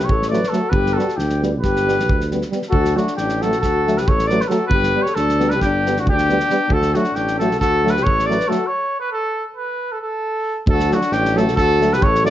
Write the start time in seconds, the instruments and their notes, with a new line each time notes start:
0.00 alto saxophone G4
0.04 tuba A1, trumpet C#5
0.09 alto saxophone A4, kick
0.22 snare
0.29 trombone F#3, euphonium A3, trumpet D5
0.33 alto saxophone B4, snare
0.44 snare
0.49 trombone F#3, euphonium A3, trumpet A4
0.53 snare
0.57 alto saxophone F#4
0.70 tuba G1, trumpet B4, kick
0.74 alto saxophone G4
0.86 snare
0.93 euphonium B3, trumpet A4
0.98 trombone G3, alto saxophone F#4, snare
1.09 snare
1.16 tuba D2, alto saxophone D4, trumpet G4, snare
1.30 snare
1.42 trombone G3, euphonium B3, snare
1.61 tuba G1, alto saxophone G4, trumpet B4, kick, snare
1.76 snare
1.86 trombone G3, euphonium B3, snare
2.00 snare
2.09 tuba D2, kick
2.21 snare
2.31 trombone G3, euphonium B3, snare
2.42 snare
2.51 trombone G3, euphonium B3, snare
2.62 snare
2.70 tuba D2, alto saxophone F#4, trumpet A4, kick
2.85 snare
2.95 trombone F#3, euphonium A3, alto saxophone D4, trumpet F#4, snare
3.07 snare
3.16 tuba A1, alto saxophone D4, trumpet G4, snare
3.29 snare
3.42 trombone F#3, euphonium A3, alto saxophone F#4, trumpet A4, snare
3.52 snare
3.60 tuba D2, alto saxophone F#4, trumpet A4, kick, snare
3.87 trombone F#3, euphonium A3, snare
3.98 alto saxophone G4, trumpet B4, snare
4.07 tuba A1, alto saxophone A4, trumpet C#5, kick
4.19 snare
4.27 trombone F#3, alto saxophone B4, trumpet D5, snare
4.31 euphonium A3
4.41 trumpet B4, snare
4.48 trombone F#3, euphonium A3, alto saxophone G4, trumpet A4, snare
4.54 alto saxophone F#4
4.67 tuba G1, trumpet B4, kick
4.73 alto saxophone G4
4.83 snare
4.95 trombone G3, euphonium B3
5.02 trumpet C#5, snare
5.08 alto saxophone A4
5.15 tuba D2, alto saxophone D4, trumpet A4, snare
5.29 snare
5.39 trombone G3, euphonium B3, snare
5.50 trumpet B4, snare
5.55 alto saxophone G4
5.61 tuba G1, alto saxophone D4, trumpet G4, kick, snare
5.86 trombone G3, euphonium B3, snare
5.97 alto saxophone D4, trumpet F#4, snare
6.06 tuba D2, trumpet G4, kick
6.11 alto saxophone D4
6.18 snare
6.29 trombone G3, euphonium B3, snare
6.40 snare
6.50 trombone G3, euphonium B3, snare
6.68 tuba D2, kick
6.72 alto saxophone F#4, trumpet A4
6.82 snare
6.94 trombone F#3, euphonium A3, alto saxophone D4, trumpet F#4, snare
7.04 snare
7.13 tuba A1, alto saxophone D4, trumpet G4, snare
7.28 snare
7.39 trombone F#3, euphonium A3, alto saxophone F#4, trumpet A4, snare
7.51 snare
7.59 tuba D2, alto saxophone F#4, trumpet A4, kick, snare
7.84 trombone F#3, euphonium A3, snare
7.90 trumpet B4
7.97 alto saxophone G4, snare
8.03 tuba A1, alto saxophone A4, trumpet C#5, kick
8.19 snare
8.26 trombone F#3, euphonium A3, trumpet D5
8.31 alto saxophone B4, snare
8.40 snare
8.48 trombone F#3, euphonium A3, alto saxophone F#4, trumpet A4, snare
8.67 trumpet C#5
9.00 trumpet B4
9.12 trumpet A4
9.56 trumpet B4
9.92 trumpet A4
10.01 trumpet A4
10.67 tuba D2, trumpet A4, kick
10.72 alto saxophone F#4
10.80 snare
10.91 trombone F#3, euphonium A3, trumpet F#4, snare
10.96 alto saxophone D4
11.02 snare
11.11 tuba A1, trumpet G4, snare
11.18 alto saxophone D4
11.25 snare
11.35 trombone F#3, euphonium A3, trumpet A4, snare
11.41 alto saxophone F#4
11.48 snare
11.55 tuba D2, trumpet A4, kick, snare
11.61 alto saxophone F#4
11.79 trombone F#3, euphonium A3, snare
11.93 alto saxophone G4, trumpet B4, snare
12.00 tuba A1, trumpet C#5, kick
12.05 alto saxophone A4
12.15 snare
12.24 trombone F#3, euphonium A3, trumpet D5, snare